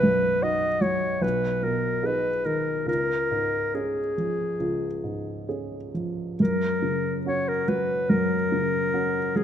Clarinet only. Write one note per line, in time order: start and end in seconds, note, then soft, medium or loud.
0.00 0.44 B4 medium
0.43 0.83 D#5 medium
0.81 1.24 C#5 medium
1.22 1.65 B4 medium
1.64 2.08 A#4 medium
2.06 2.47 B4 medium
2.46 2.87 A#4 medium
2.88 3.76 A#4 medium
3.75 5.49 G#4 medium
6.40 7.21 A#4 medium
7.26 7.50 C#5 medium
7.48 7.70 A#4 medium
7.69 8.11 B4 medium
8.10 9.38 A#4 medium
9.36 9.44 G#4 medium